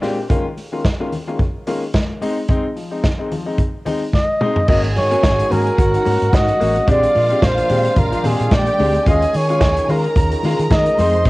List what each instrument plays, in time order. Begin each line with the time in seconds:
0.01 grand piano A#2 G#3 C4 D4 F4 G4, snare, open hi-hat, high conga
0.29 grand piano D#3 G#3 A#3 C#4 F4, kick, closed hi-hat
0.57 open hi-hat, muted conga
0.72 grand piano D#3 G#3 A#3 C#4 F4
0.85 kick, snare, closed hi-hat, high conga
1.00 grand piano D#3 G#3 A#3 C#4 F4
1.12 open hi-hat, low conga
1.27 grand piano D#3 G#3 A#3 C#4 F4
1.39 kick, closed hi-hat, muted conga
1.67 grand piano D#3 G#3 A#3 C#4 F4, open hi-hat, muted conga
1.94 kick, snare, closed hi-hat, high conga
2.21 grand piano G#3 C4 D#4, open hi-hat, high conga
2.48 grand piano G#3 C4 D#4, kick, closed hi-hat
2.76 grand piano F3, open hi-hat, muted conga
2.91 grand piano G#3 C4 D#4
3.04 kick, snare, closed hi-hat, high conga
3.18 grand piano G#3 C4 D#4
3.31 grand piano F3, open hi-hat, low conga
3.46 grand piano G#3 C4 D#4
3.58 kick, closed hi-hat, muted conga
3.85 grand piano G#3 C4 D#4, open hi-hat, muted conga, low conga
4.13 flugelhorn D#5, kick, snare, high conga
4.41 grand piano G#3 C4 D#4, mid tom, high conga
4.56 floor tom
4.68 fingered electric bass G#1, french horn section G#3 C#4 F#4, grand piano A#3 C#4 F#4, violin section G#4 G#5, flugelhorn D#5, kick, crash
4.84 closed hi-hat
4.96 grand piano G#2 D#3, fingered electric bass G#2, flugelhorn C#5, open hi-hat, muted conga
5.11 grand piano A#3 C#4 F#4, closed hi-hat
5.23 fingered electric bass G#1, grand piano C#4 F#4, kick, snare, closed hi-hat, high conga
5.38 grand piano G#2 D#3, closed hi-hat
5.50 fingered electric bass G#2, grand piano A#3 C#4 F#4, flugelhorn A#4, open hi-hat, low conga
5.67 closed hi-hat
5.78 fingered electric bass G#1, grand piano C#4 F#4, violin section F#4 F#5, kick, closed hi-hat, muted conga
5.93 grand piano G#2 D#3, closed hi-hat
6.05 fingered electric bass G#2, grand piano A#3 C#4 F#4, open hi-hat, muted conga
6.22 fingered electric bass G#2, closed hi-hat
6.33 grand piano G#2 D#3, fingered electric bass G#2, flugelhorn D#5, kick, snare, closed hi-hat, high conga
6.48 closed hi-hat
6.60 fingered electric bass A1, grand piano A#3 C#4 F#4, open hi-hat, high conga
6.76 grand piano C#4 F#4, closed hi-hat
6.87 fingered electric bass A#1, grand piano G#3 C4 D4 G4, french horn section A#3 D4, violin section F4 F5, flugelhorn D5, kick, closed hi-hat
7.03 closed hi-hat
7.15 grand piano A#2 F3, fingered electric bass A#2, open hi-hat, muted conga
7.30 grand piano G#3 C4 D4 G4, closed hi-hat
7.42 fingered electric bass A#1, grand piano D4 G4, flugelhorn C5, kick, snare, closed hi-hat, high conga
7.58 grand piano A#2 F3, closed hi-hat
7.69 fingered electric bass A#2, grand piano G#3 C4 D4 G4, open hi-hat, low conga
7.85 closed hi-hat
7.96 fingered electric bass A#1, grand piano D4 G4, flugelhorn A#4, kick, closed hi-hat, muted conga, low conga
8.12 grand piano A#2 F3, closed hi-hat
8.24 fingered electric bass A#2, grand piano G#3 C4 D4 G4, flugelhorn G#4, open hi-hat, muted conga, low conga
8.40 fingered electric bass A#2, closed hi-hat
8.51 fingered electric bass A#2, grand piano A#2 F3, violin section G4 G5, flugelhorn D5, kick, snare, closed hi-hat, high conga
8.67 closed hi-hat
8.79 fingered electric bass D2, grand piano G#3 C4 D4 G4, open hi-hat, high conga
8.94 grand piano D4 G4, closed hi-hat
9.06 fingered electric bass D#2, french horn section D#3 C#4 F4 G#4, grand piano G#3 C#4 F4, violin section G#4 G#5, flugelhorn D#5, kick, closed hi-hat
9.22 closed hi-hat
9.33 grand piano D#3, fingered electric bass D#3, flugelhorn C#5, open hi-hat, muted conga
9.49 grand piano G#3 C#4 F4, closed hi-hat
9.61 fingered electric bass D#2, grand piano C#4 F4, kick, snare, closed hi-hat, high conga
9.77 grand piano D#3, closed hi-hat
9.88 fingered electric bass D#3, grand piano G#3 C#4 F4, violin section A#4 A#5, flugelhorn A#4, open hi-hat, low conga
10.04 closed hi-hat
10.15 fingered electric bass D#2, grand piano C#4 F4, kick, closed hi-hat, muted conga
10.32 grand piano D#3, closed hi-hat
10.43 fingered electric bass D#3, grand piano G#3 C#4 F4, open hi-hat, muted conga
10.59 fingered electric bass D#3, closed hi-hat
10.70 fingered electric bass D#3, grand piano D#3, flugelhorn D#5, kick, snare, closed hi-hat, high conga
10.86 closed hi-hat
10.97 fingered electric bass F2, french horn section F3 C4 D#4, grand piano G#3 C4 D#4, violin section C5 C6, snare, open hi-hat, high conga
11.13 grand piano C4 D#4, closed hi-hat
11.25 grand piano G#3 C4 D#4, flugelhorn D#5, kick, closed hi-hat